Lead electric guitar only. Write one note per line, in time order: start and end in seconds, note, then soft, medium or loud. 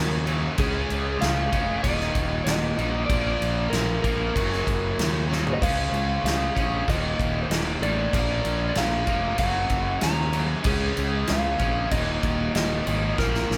0.00 0.24 A#4 medium
0.59 1.18 G#4 medium
1.21 1.83 F5 loud
1.83 2.43 D#5 loud
2.44 3.05 D#5 medium
3.06 3.73 D5 loud
3.70 4.01 A#4 medium
4.02 5.25 A#4 medium
5.54 5.61 D#5 medium
5.63 6.24 F5 medium
6.25 6.90 F5 medium
6.89 7.42 D#5 medium
7.43 7.50 C5 medium
7.51 7.59 D#5 medium
7.83 8.68 D5 loud
8.69 8.76 D5 medium
8.77 9.39 F5 medium
9.39 10.05 F#5 loud
10.03 10.47 A#5 loud
10.66 11.25 G#4 medium
11.30 11.89 F5 medium
11.92 12.55 D#5 loud
12.56 13.21 D#5 loud
13.19 13.58 A#4 medium